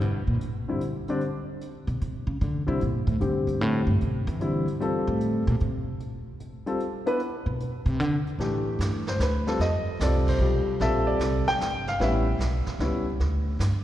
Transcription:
0.01 G2, closed hi-hat
0.27 A#2
0.41 closed hi-hat
0.68 D3 G3 C4 E4
0.81 closed hi-hat
1.08 D3 G3 C4 D4, closed hi-hat
1.21 closed hi-hat
1.61 closed hi-hat
1.87 B2, closed hi-hat
2.01 C3, closed hi-hat
2.27 C#3
2.41 D3, closed hi-hat
2.67 C3 D3 G3 C4 E4
2.81 A#2, closed hi-hat
3.07 A2, closed hi-hat
3.20 G#2 D3 G3 C4 G4, closed hi-hat
3.47 G2, closed hi-hat
3.61 A2 D3 G3 C4 E4, closed hi-hat
3.87 G2
4.01 B2, closed hi-hat
4.27 E3, closed hi-hat
4.40 D3 G3 C4 E4, closed hi-hat
4.67 closed hi-hat
4.80 G3 C4 F4 A4, closed hi-hat
5.07 A2
5.21 closed hi-hat
5.47 A#2, closed hi-hat
5.60 C3, closed hi-hat
6.00 closed hi-hat
6.40 closed hi-hat
6.66 G3 C4 F4 A4, closed hi-hat
6.80 closed hi-hat
7.06 B3 D4 E4 B4, closed hi-hat
7.20 closed hi-hat
7.46 B2
7.60 closed hi-hat
7.86 C3, closed hi-hat
8.00 D3, closed hi-hat
8.27 closed hi-hat
8.39 A2 E3 A3 D4 G4, brush sweep, snare
8.79 G2, snare, hi-hat pedal
9.07 C5, snare
9.19 D2 B4, snare, hi-hat pedal
9.47 G3 C4 F4 A4, snare
9.59 F2 D#5, brush sweep, snare
10.00 C2 G3 C4 F4 A4 D5, snare, hi-hat pedal
10.27 C5, kick, ride
10.39 B1 G3 C4 F4 G4
10.66 muted upright bass stroke
10.80 A#1 G3 C4 F4 A4 E5, brush sweep, snare
11.07 D5
11.19 C2, snare, hi-hat pedal
11.47 G5, muted upright bass stroke, snare
11.59 G1, snare, hi-hat pedal
11.87 F5, snare
12.00 A1 G3 B3 C#4 E4 E5, brush sweep, snare
12.39 B1, snare, hi-hat pedal
12.67 muted upright bass stroke, kick, snare
12.79 C#2 G3 B3 C#4 E4, snare
13.20 D2, brush sweep, snare
13.59 G2, snare, hi-hat pedal

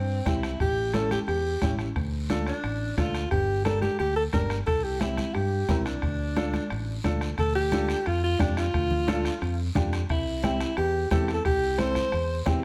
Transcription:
Already playing: G2 C4
0.26 C2 C4 E4 G4, bombo low, bombo rim, high conga, short guiro
0.43 bombo rim, short guiro
0.60 A1 G4, bombo low, bombo rim, long guiro
0.94 C#4 E4 A4, bombo rim, high conga, short guiro
1.11 G4, bombo rim, high conga, short guiro
1.28 E2 G4, bombo rim, long guiro
1.62 A1 C#4 E4 G4, bombo low, bombo rim, high conga, short guiro
1.79 bombo rim, short guiro
1.96 D2, bombo low, bombo rim, long guiro
2.30 D4 F4 A4, bombo rim, high conga, short guiro
2.46 D4, bombo rim, short guiro
2.64 A1, bombo rim, long guiro
2.97 D2 D4 F4 A4, bombo low, bombo rim, high conga, short guiro
3.14 bombo rim, short guiro
3.31 G1 G4, bombo low, bombo rim, long guiro
3.65 D4 G4 A4 A#4, bombo rim, high conga, short guiro
3.81 G4, bombo rim, high conga, short guiro
3.99 D2 G4, bombo rim, long guiro
4.16 A4
4.33 G1 D4 G4 A#4, bombo low, bombo rim, high conga, short guiro
4.50 bombo rim, short guiro
4.67 C2 A4, bombo low, bombo rim, long guiro
4.84 G4
5.00 C4 E4 G4, bombo rim, high conga, short guiro
5.17 bombo rim, high conga, short guiro
5.34 G2 G4, bombo rim, long guiro
5.69 C2 C4 E4 A#4, bombo low, bombo rim, high conga, short guiro
5.85 D4, bombo rim, short guiro
6.02 D2, bombo low, bombo rim, long guiro
6.36 D4 F4 A4, bombo rim, high conga, short guiro
6.53 bombo rim, high conga, short guiro
6.70 A1, bombo rim, long guiro
7.04 D2 D4 F4 A4, bombo low, bombo rim, high conga, short guiro
7.21 bombo rim, short guiro
7.38 D2 A4, bombo low, bombo rim, long guiro
7.55 G4
7.72 D4 F4 A4, bombo rim, high conga, short guiro
7.89 bombo rim, short guiro
8.06 F2 F4, bombo rim, long guiro
8.24 F4
8.39 F2 D4 F4 G4, bombo low, bombo rim, high conga, short guiro
8.57 F4, bombo rim, short guiro
8.74 D2, bombo low, bombo rim, long guiro
8.91 low conga
9.07 D4 F4 A4, bombo rim, high conga, short guiro
9.25 bombo rim, short guiro
9.42 F2, bombo rim, long guiro
9.75 F2 D4 F4 G4, bombo low, bombo rim, high conga, low conga, short guiro
9.93 bombo rim, short guiro
10.09 C2 E4, bombo low, bombo rim, long guiro
10.43 C4 E4 G4, bombo rim, high conga, short guiro
10.60 bombo rim, short guiro
10.77 E2 G4, bombo rim, long guiro
11.11 E2 C4 E4 G4 A4, bombo low, bombo rim, high conga, short guiro
11.28 bombo rim, short guiro
11.33 A4
11.45 C2 G4, bombo low, bombo rim, long guiro
11.78 C4 E4 A4 C5, bombo rim, high conga, short guiro
11.95 bombo rim, high conga, short guiro
12.12 E2, bombo rim, long guiro
12.46 E2 C4 E4 G4, bombo low, bombo rim, high conga, low conga, short guiro

